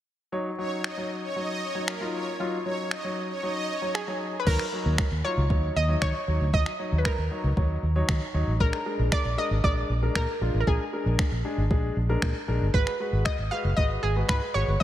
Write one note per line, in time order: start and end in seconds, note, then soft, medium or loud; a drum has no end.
0.32 0.49 F#3 medium
0.32 0.49 D#4 medium
0.32 0.49 C#5 medium
0.58 0.83 F#3 medium
0.58 0.84 D#4 medium
0.58 0.70 C#5 medium
0.58 0.84 C#5 medium
0.84 0.96 D#5 medium
0.84 finger snap loud
0.97 1.22 F#3 medium
0.97 1.22 D#4 medium
0.97 1.23 C#5 medium
1.23 1.34 C#5 medium
1.36 1.61 F#3 medium
1.36 1.61 D#4 medium
1.36 1.61 C#5 medium
1.36 1.58 D#5 medium
1.62 1.73 C#5 medium
1.75 1.92 F#3 medium
1.75 1.92 D#4 medium
1.75 1.92 C#5 medium
1.88 1.99 A#4 medium
1.88 finger snap loud
2.00 2.26 F#3 medium
2.00 2.26 D#4 medium
2.00 2.26 F4 medium
2.14 2.25 C#5 medium
2.40 2.56 F#3 medium
2.40 2.56 D#4 medium
2.40 2.57 F4 medium
2.65 2.91 F#3 medium
2.65 2.91 D#4 medium
2.65 2.77 C#5 medium
2.65 2.91 C#5 medium
2.91 3.02 D#5 medium
2.91 finger snap loud
3.04 3.29 F#3 medium
3.04 3.29 D#4 medium
3.04 3.29 C#5 medium
3.30 3.41 C#5 medium
3.43 3.68 F#3 medium
3.43 3.68 D#4 medium
3.43 3.68 C#5 medium
3.43 3.65 D#5 medium
3.69 3.80 C#5 medium
3.82 3.98 F#3 medium
3.82 3.99 D#4 medium
3.82 3.99 C#5 medium
3.95 4.36 G#4 medium
3.95 finger snap loud
4.07 4.33 F#3 medium
4.07 4.33 D#4 medium
4.07 4.33 C#5 medium
4.40 4.47 B4 medium
4.46 4.56 D#2 loud
4.46 4.63 F#3 medium
4.46 4.63 D#4 medium
4.46 4.95 A#4 loud
4.46 4.63 C#5 medium
4.46 kick loud
4.46 crash medium
4.59 finger snap medium
4.72 5.06 F#3 medium
4.72 5.06 D#4 medium
4.72 5.06 C#5 medium
4.86 4.95 D#2 medium
4.98 finger snap loud
4.98 kick loud
5.11 5.21 D#2 medium
5.24 5.41 F#3 medium
5.24 5.41 D#4 medium
5.24 5.41 F4 medium
5.24 5.72 C#5 loud
5.37 5.46 C#2 medium
5.50 5.69 D#2 medium
5.50 5.75 F#3 medium
5.50 5.75 D#4 medium
5.50 5.75 C#5 medium
5.50 kick loud
5.76 5.95 D#2 medium
5.76 6.03 D#5 loud
5.89 6.14 F#3 medium
5.89 6.14 D#4 medium
5.89 6.14 C#5 medium
6.02 6.11 D#3 loud
6.02 6.55 C#5 loud
6.02 finger snap loud
6.02 kick loud
6.28 6.37 D#2 medium
6.28 6.44 F#3 medium
6.28 6.44 D#4 medium
6.28 6.44 C#5 medium
6.41 6.50 D2 medium
6.53 6.70 F#3 medium
6.53 6.70 D#4 medium
6.53 6.95 D#5 loud
6.53 6.70 D#5 medium
6.53 kick loud
6.66 finger snap medium
6.79 7.13 F#3 medium
6.79 7.13 D#4 medium
6.79 7.13 C#5 medium
6.92 7.01 D#2 medium
6.98 7.05 B4 medium
7.05 7.79 A#4 medium
7.05 finger snap loud
7.05 kick loud
7.18 7.27 D#2 medium
7.31 7.48 F#3 medium
7.31 7.48 D#4 medium
7.31 7.48 C#5 medium
7.44 7.53 C#2 medium
7.57 7.76 D#2 medium
7.57 7.82 F#3 medium
7.57 7.82 D#4 medium
7.57 7.82 C#5 medium
7.57 kick loud
7.83 8.01 D#2 medium
7.96 8.21 F#3 medium
7.96 8.21 D#4 medium
7.96 8.21 C#5 medium
8.09 8.18 D#3 medium
8.09 finger snap loud
8.09 kick loud
8.34 8.44 D#2 medium
8.34 8.51 F#3 medium
8.34 8.51 D#4 medium
8.34 8.51 C#5 medium
8.47 8.57 A1 medium
8.60 8.70 A#1 loud
8.60 8.77 G#3 medium
8.60 8.77 D4 medium
8.60 9.09 A#4 loud
8.60 8.77 A#4 medium
8.60 kick loud
8.73 finger snap medium
8.86 9.19 G#3 medium
8.86 9.19 D4 medium
8.86 9.20 A#4 medium
8.99 9.08 A#1 medium
9.12 9.39 D5 loud
9.12 finger snap loud
9.12 kick loud
9.25 9.34 A#1 medium
9.37 9.54 G#3 medium
9.37 9.54 D4 medium
9.37 9.55 A#4 medium
9.37 9.65 D#5 loud
9.51 9.60 G#1 medium
9.63 9.89 G#3 medium
9.63 9.89 D4 medium
9.63 9.89 A#4 medium
9.63 10.17 D5 loud
9.63 kick loud
9.89 10.08 A#1 medium
10.02 10.27 G#3 medium
10.02 10.28 D4 medium
10.02 10.28 A#4 medium
10.15 10.25 A#2 medium
10.15 10.57 A#4 loud
10.15 finger snap loud
10.15 kick loud
10.41 10.51 A#1 medium
10.41 10.58 G#3 medium
10.41 10.58 D4 medium
10.41 10.58 F4 medium
10.54 10.63 A1 medium
10.60 10.67 A#4 medium
10.67 10.76 A#1 loud
10.67 10.84 G#3 medium
10.67 10.84 D4 medium
10.67 11.15 G#4 medium
10.67 10.84 A#4 medium
10.67 kick loud
10.93 11.26 G#3 medium
10.93 11.26 D4 medium
10.93 11.27 A#4 medium
11.06 11.15 A#1 medium
11.19 finger snap loud
11.19 kick loud
11.32 11.41 A#1 medium
11.45 11.61 G#3 medium
11.45 11.62 D4 medium
11.45 11.62 G#4 medium
11.58 11.67 G#1 medium
11.70 11.89 A#1 medium
11.70 11.96 G#3 medium
11.70 11.96 D4 medium
11.70 11.96 G#4 medium
11.70 kick loud
11.97 12.15 A#1 loud
12.09 12.34 G#3 medium
12.09 12.34 D4 medium
12.09 12.35 A#4 medium
12.22 12.32 A#2 medium
12.22 finger snap loud
12.22 kick loud
12.48 12.58 A#1 medium
12.48 12.65 G#3 medium
12.48 12.65 D4 medium
12.48 12.65 A#4 medium
12.61 12.70 G1 medium
12.74 12.83 G#1 loud
12.74 12.91 G#3 medium
12.74 12.91 F#4 medium
12.74 13.27 B4 loud
12.74 12.91 B4 medium
12.74 kick loud
12.87 finger snap medium
13.00 13.33 G#3 medium
13.00 13.33 F#4 medium
13.00 13.34 B4 medium
13.13 13.22 G#1 medium
13.25 13.50 D#5 loud
13.25 finger snap loud
13.25 kick loud
13.39 13.48 G#1 medium
13.51 13.68 G#3 medium
13.51 13.68 F#4 medium
13.51 13.69 B4 medium
13.51 13.78 F5 loud
13.64 13.74 F#1 medium
13.77 14.03 G#3 medium
13.77 14.03 F#4 medium
13.77 14.03 B4 medium
13.77 14.04 D#5 loud
13.77 kick loud
14.03 14.22 G#1 medium
14.03 14.27 G#4 medium
14.16 14.41 G#3 medium
14.16 14.41 F#4 medium
14.16 14.41 B4 medium
14.29 14.38 G#2 loud
14.29 14.53 B4 loud
14.29 finger snap loud
14.29 kick loud
14.54 14.64 G#1 medium
14.54 14.72 G#3 medium
14.54 14.72 F#4 medium
14.54 14.72 B4 medium
14.54 14.79 C#5 loud
14.68 14.77 G1 medium